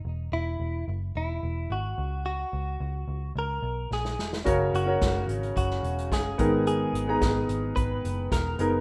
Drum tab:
HH |----------------|----------------|x-x-x-xxx-xxx-x-|x-x-x-x-x-x-x-x-|
SD |----------------|------------oooo|----o----o--o---|----o-------o---|
BD |----------------|----------------|o---o---o---o-o-|----o---o---o---|